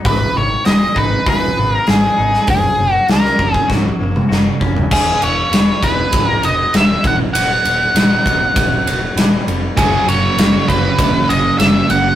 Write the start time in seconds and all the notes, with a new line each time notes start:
Already playing: B3
0.05 G#1 G#2 B4, kick, open hi-hat
0.35 G#1 D#3 C#5
0.65 D#1 G#3 D#5, snare, open hi-hat
0.96 G#1 D#4 B4, kick
1.26 D#1 G#4 B4, kick, open hi-hat
1.57 G#1 B3
1.74 A#4
1.87 G#1 G#4, snare, open hi-hat
2.18 G#1 D#4
2.34 snare
2.47 F#1 F#2 G#4, kick, open hi-hat
2.79 F#1 C#3
2.93 F#4
3.08 C#2 F#3 A#4, snare, open hi-hat
3.25 snare
3.38 F#1 C#4, kick
3.54 G#4, kick
3.68 C#1 F#4, kick, snare
3.85 high tom
3.99 F#1 A#3
4.16 mid tom
4.29 F#1 F#4, snare
4.60 F#1 C#4, kick
4.76 floor tom
4.91 E1 E2 G#4, kick, crash
5.21 E1 C#5, ride
5.51 E1 E4, snare, ride
5.83 E1 G#3 B4, kick, ride
6.13 C#1 E3, kick, ride
6.27 A#4
6.43 E1 B3 D#5, ride
6.74 E1 G#3 E5, snare, ride
7.04 D#1 B1 F#5, kick, ride
7.34 D#1 B1 F#5, ride
7.65 D#1, ride
7.94 D#1 D#4, snare, ride
8.26 D#1 B2, kick, ride
8.56 D#1, kick, ride
8.86 D#1 F#3, ride
9.16 D#1 B2, snare, ride
9.47 F1, ride
9.76 F#1 F#2 C#3 F#3 C#4 F#4 G#4, kick, ride
10.07 F#1 C#5, ride
10.37 F#1 F#4, snare, ride
10.68 F#1 F#3 B4, kick, ride
10.98 E1 C#3, kick, ride
11.28 F#1 C#4 D#5, ride
11.58 F#1 F#3 E5, snare, ride
11.87 F#1 C#3 F#5, ride